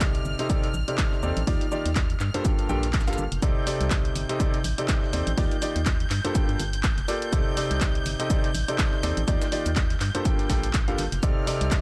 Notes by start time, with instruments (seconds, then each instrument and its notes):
Already playing: fm bass C2, grand piano C3 C4 D#4 G4 A4 D5, string section F6
0.00 kick, snare, clap, closed hi-hat, shaker
0.15 closed hi-hat
0.25 fm bass G1, shaker
0.39 grand piano C3 C4 D#4 G4 A4 D#5, snare, closed hi-hat
0.50 grand piano C3 C4 D#4 G4 A4 D5, kick, closed hi-hat, shaker
0.64 snare, closed hi-hat
0.74 fm bass A1, shaker
0.88 grand piano C3 C4 D#4 G4 A4 D5, closed hi-hat
0.98 kick, snare, clap, closed hi-hat, shaker
1.12 snare
1.23 fm bass D#2, grand piano C4 D#4 G4 A4 D5, shaker
1.37 fm bass A1, closed hi-hat
1.47 fm bass D#2, grand piano D#3 A#3 D#4 F4 G4 D5, kick, closed hi-hat, open hi-hat
1.61 closed hi-hat
1.72 grand piano D#3 A#3 D#4 F4 G4 D5, shaker
1.86 fm bass D#2, closed hi-hat
1.96 kick, snare, clap, closed hi-hat, shaker
2.10 closed hi-hat
2.20 fm bass G2, clap, shaker
2.34 grand piano G2 A#3 F4 G4 A4 C5, snare, closed hi-hat
2.45 grand piano G2 A#3 F4 G4 A4 G5, kick, closed hi-hat, shaker
2.59 closed hi-hat
2.69 fm bass A#1, grand piano G2 A#3 F4 G4 A4 G5, shaker
2.83 snare, closed hi-hat
2.93 kick, snare, clap, closed hi-hat, shaker
3.01 snare, shaker
3.08 grand piano G2 A#3 F4 G4 A4 F5, snare, closed hi-hat, shaker
3.13 snare, shaker
3.18 fm bass G1, shaker
3.32 fm bass F1, closed hi-hat
3.42 fm bass C2, grand piano C3 C4 D#4 G4 A4 D5, string section G6, kick, closed hi-hat, shaker
3.67 grand piano C3 C4 D#4 G4 A4 D5, open hi-hat, shaker
3.81 fm bass C2, snare, closed hi-hat
3.91 kick, snare, clap, closed hi-hat, shaker
4.05 closed hi-hat
4.16 fm bass G1, open hi-hat, shaker
4.29 grand piano C3 C4 D#4 G4 A4 D#5, snare, closed hi-hat
4.40 grand piano C3 C4 D#4 G4 A4 D5, kick, closed hi-hat, shaker
4.54 snare, closed hi-hat
4.64 fm bass A1, open hi-hat, shaker
4.78 grand piano C3 C4 D#4 G4 A4 D5, closed hi-hat
4.88 kick, snare, clap, closed hi-hat, shaker
5.03 snare
5.13 fm bass D#2, grand piano C4 D#4 G4 A4 D5, open hi-hat, shaker
5.27 fm bass A1, closed hi-hat
5.38 fm bass D#2, grand piano D#3 A#3 D#4 F4 G4 D5, kick, closed hi-hat, open hi-hat
5.51 closed hi-hat
5.62 grand piano D#3 A#3 D#4 F4 G4 D5, open hi-hat, shaker
5.76 fm bass D#2, closed hi-hat
5.86 kick, snare, clap, closed hi-hat, shaker
6.00 closed hi-hat
6.10 fm bass G2, clap, open hi-hat, shaker
6.25 grand piano G2 A#3 F4 G4 A4 C5, snare, closed hi-hat
6.35 grand piano G2 A#3 F4 G4 A4 G5, kick, closed hi-hat, shaker
6.49 fm bass G2, closed hi-hat
6.59 fm bass G1, open hi-hat, shaker
6.73 snare, closed hi-hat
6.83 kick, snare, clap, closed hi-hat, shaker
6.98 fm bass F1, snare, closed hi-hat
7.08 grand piano A#3 F4 G4 A4 D5, open hi-hat, shaker
7.22 closed hi-hat
7.33 fm bass C2, grand piano C3 C4 D#4 G4 A4 D5, kick, closed hi-hat, shaker
7.57 grand piano C3 C4 D#4 G4 A4 D5, open hi-hat, shaker
7.71 fm bass C2, snare, closed hi-hat
7.81 kick, snare, clap, closed hi-hat, shaker
7.95 closed hi-hat
8.06 fm bass G1, open hi-hat, shaker
8.20 grand piano C3 C4 D#4 G4 A4 D#5, snare, closed hi-hat
8.30 grand piano C3 C4 D#4 G4 A4 D5, kick, closed hi-hat, shaker
8.44 snare, closed hi-hat
8.55 fm bass A1, open hi-hat, shaker
8.68 grand piano C3 C4 D#4 G4 A4 D5, closed hi-hat
8.78 kick, snare, clap, closed hi-hat, shaker
8.93 snare
9.03 fm bass D#2, grand piano C4 D#4 G4 A4 D5, snare, open hi-hat, shaker
9.17 fm bass A1, closed hi-hat
9.28 fm bass D#2, grand piano D#3 A#3 D#4 F4 G4 D5, kick, closed hi-hat, shaker
9.42 snare, closed hi-hat, shaker
9.52 grand piano D#3 A#3 D#4 F4 G4 D5, snare, open hi-hat
9.66 fm bass D#2, closed hi-hat, shaker
9.76 kick, snare, clap, closed hi-hat, shaker
9.90 snare, closed hi-hat
10.00 fm bass G2, clap, open hi-hat, shaker
10.15 grand piano G2 A#3 F4 G4 A4 C5, closed hi-hat
10.25 grand piano G2 A#3 F4 G4 A4 G5, kick, closed hi-hat, shaker
10.39 snare, closed hi-hat
10.50 fm bass A#1, grand piano G2 A#3 F4 G4 A4 G5, kick, snare, open hi-hat, shaker
10.63 snare, closed hi-hat
10.73 kick, snare, clap, closed hi-hat, shaker
10.88 grand piano G2 A#3 F4 G4 A4 F5, snare, closed hi-hat
10.98 fm bass G1, open hi-hat, shaker
11.12 fm bass F1, snare, closed hi-hat
11.23 fm bass C2, grand piano C3 C4 D#4 G4 A4 D5, string section F6, kick, closed hi-hat, shaker
11.47 grand piano C3 C4 D#4 G4 A4 D5, open hi-hat, shaker
11.61 fm bass C2, snare, closed hi-hat
11.71 kick, snare, clap, closed hi-hat, shaker